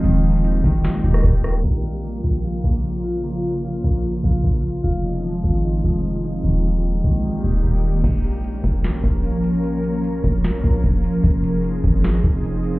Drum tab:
CC |------------------------------------------------|------------------------------------------------|------------------------------------------------|------------------------------------------------|
HH |x-----x-x-x-x-----o-----x-----x-----x-----x-----|------------------------------------------------|------------------------------------------------|------------------------------------------------|
SD |------------------------o--------r--------r-----|------------------------------------------------|------------------------------------------------|------------------------------------------------|
BD |------------------o-----------------o-----------|------------------------------------------------|------------------------------------------------|------------------------------------------------|

CC |------------------------------------------------|x-----------------------------------------------|------------------------------------------------|------------------------------------------------|
HH |------------------------------------------------|x-----x--x--x-----x-----x-----x-----x-----x--x--|x-----x--x--x-----x-----x-----x-----x-----x--x--|x-----x--x--x-----x-----x-----x-----x-----x--x--|
SD |------------------------------------------------|------------------------o-----------------------|------------------------o-----------------------|------------------------o-----------------------|
BD |------------------------------------------------|o-----------------o-----------o-----------------|------------------o-----------------o-----------|o-----------------o-----------o-----------------|